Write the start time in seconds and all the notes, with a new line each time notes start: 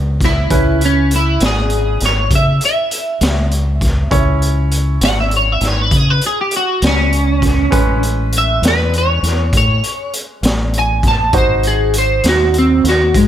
Already playing: C#2 E4 B4 D#5
0.21 kick, snare, closed hi-hat
0.25 E4
0.50 C#2 C#4 E4 B4, kick, closed hi-hat
0.81 closed hi-hat
0.85 C#4
1.11 closed hi-hat
1.16 E4
1.40 G#1, snare, closed hi-hat
1.46 G#4
1.70 closed hi-hat
2.00 G#1, snare, closed hi-hat
2.06 C#5
2.31 C#3, kick, closed hi-hat
2.35 E5
2.61 closed hi-hat
2.65 E5
2.91 closed hi-hat
3.21 C#2, snare, closed hi-hat
3.51 closed hi-hat
3.81 kick, snare, closed hi-hat
4.11 C#2 C#4 E4 C#5, kick, closed hi-hat
4.42 closed hi-hat
4.71 closed hi-hat
5.01 G#1, snare, closed hi-hat
5.05 F#5
5.20 E5
5.31 closed hi-hat
5.36 C#5
5.52 E5
5.61 G#1, snare, closed hi-hat
5.67 C#5
5.82 B4
5.91 C#3, kick, closed hi-hat
5.97 G#4
6.10 B4
6.21 closed hi-hat
6.26 G#4
6.41 G4
6.51 closed hi-hat
6.56 F#4
6.82 C#2, snare, closed hi-hat
6.87 C#4
7.13 closed hi-hat
7.42 kick, snare, closed hi-hat
7.71 A1 G#3 C#4 B4, kick, closed hi-hat
8.03 closed hi-hat
8.32 closed hi-hat
8.38 E5
8.62 E2, snare, closed hi-hat
8.68 B4
8.93 closed hi-hat
8.98 C#5
9.23 E2, snare, closed hi-hat
9.53 A2, kick, closed hi-hat
9.57 C#5
9.84 closed hi-hat
10.13 closed hi-hat
10.43 A1, snare, closed hi-hat
10.73 closed hi-hat
10.79 G#5
11.03 kick, snare, closed hi-hat
11.08 A5
11.33 G#1 D#4 F#4 C5, kick, closed hi-hat
11.38 C5
11.63 closed hi-hat
11.67 G#4
11.93 closed hi-hat
11.98 C5
12.24 D#2, snare, closed hi-hat
12.29 F#4
12.54 closed hi-hat
12.58 C4
12.84 D#2, snare, closed hi-hat
12.89 F#4
13.14 G#2 G#3, kick, closed hi-hat